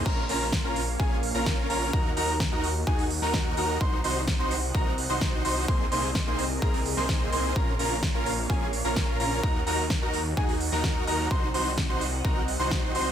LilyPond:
<<
  \new Staff \with { instrumentName = "Grand piano" } { \time 4/4 \key bes \minor \tempo 4 = 128 bes''16 r16 bes''16 r8 bes''16 r8 aes''16 r8 bes''8. bes''8 | bes''16 r16 bes''16 r8 bes''16 r8 aes''16 r8 bes''8. bes''8 | c'''16 r16 c'''16 r8 c'''16 r8 bes''16 r8 c'''8. c'''8 | c'''16 r16 c'''16 r8 c'''16 r8 bes''16 r8 c'''8. c'''8 |
bes''16 r16 bes''16 r8 bes''16 r8 aes''16 r8 bes''8. bes''8 | bes''16 r16 bes''16 r8 bes''16 r8 aes''16 r8 bes''8. bes''8 | c'''16 r16 c'''16 r8 c'''16 r8 bes''16 r8 c'''8. c'''8 | }
  \new Staff \with { instrumentName = "Analog synth pad" } { \time 4/4 \key bes \minor <bes bes' des'' f''>1 | <ees' ges'>1 | <c' c'' ees'' ges''>1 | <c' aes' bes'>1 |
<bes bes' des'' f''>1 | <ees' ges'>1 | <c' c'' ees'' ges''>1 | }
  \new Staff \with { instrumentName = "Supersaw synth" } { \time 4/4 \key bes \minor <des' f' bes'>16 r16 <des' f' bes'>16 r8 <des' f' bes'>16 r8 <des' f' aes'>16 r8 <des' f' bes'>8. <des' f' bes'>8 | <ees' ges' bes'>16 r16 <ees' ges' bes'>16 r8 <ees' ges' bes'>16 r8 <ees' ges' aes'>16 r8 <ees' ges' bes'>8. <ees' ges' bes'>8 | <ees' ges' c''>16 r16 <ees' ges' c''>16 r8 <ees' ges' c''>16 r8 <ees' ges' bes'>16 r8 <ees' ges' c''>8. <ees' ges' c''>8 | <bes c' ees' aes' c''>16 r16 <bes c' ees' aes' c''>16 r8 <bes c' ees' aes' c''>16 r8 <bes c' ees' aes' bes'>16 r8 <bes c' ees' aes' c''>8. <bes c' ees' aes' c''>8 |
<des' f' bes'>16 r16 <des' f' bes'>16 r8 <des' f' bes'>16 r8 <des' f' aes'>16 r8 <des' f' bes'>8. <des' f' bes'>8 | <ees' ges' bes'>16 r16 <ees' ges' bes'>16 r8 <ees' ges' bes'>16 r8 <ees' ges' aes'>16 r8 <ees' ges' bes'>8. <ees' ges' bes'>8 | <ees' ges' c''>16 r16 <ees' ges' c''>16 r8 <ees' ges' c''>16 r8 <ees' ges' bes'>16 r8 <ees' ges' c''>8. <ees' ges' c''>8 | }
  \new Staff \with { instrumentName = "Detuned saw bass" } { \clef bass \time 4/4 \key bes \minor bes,,8 bes,,8. bes,,8. bes,,8. bes,,8. bes,,8 | ees,8 ees,8. ees,8. ees,8. ees,8. ees,8 | c,8 c,8. c,8. c,8. c,8. c,8 | c,8 c,8. c,8. c,8. c,8. c,8 |
bes,,8 bes,,8. bes,,8. bes,,8. bes,,8. bes,,8 | ees,8 ees,8. ees,8. ees,8. ees,8. ees,8 | c,8 c,8. c,8. c,8. c,8. c,8 | }
  \new DrumStaff \with { instrumentName = "Drums" } \drummode { \time 4/4 <cymc bd>8 hho8 <bd sn>8 hho8 bd8 hho8 <bd sn>8 hho8 | bd8 hho8 <bd sn>8 hho8 bd16 hho16 hho16 sn16 <bd sn>8 hho8 | bd8 hho8 <bd sn>8 hho8 bd8 hho8 <bd sn>8 hho8 | bd8 hho8 <bd sn>8 hho8 bd16 hho16 hho16 sn16 <bd sn>8 hho8 |
bd8 hho8 <bd sn>8 hho8 bd8 hho8 <bd sn>8 hho8 | bd8 hho8 <bd sn>8 hho8 bd16 hho16 hho16 sn16 <bd sn>8 hho8 | bd8 hho8 <bd sn>8 hho8 bd8 hho8 <bd sn>8 hho8 | }
>>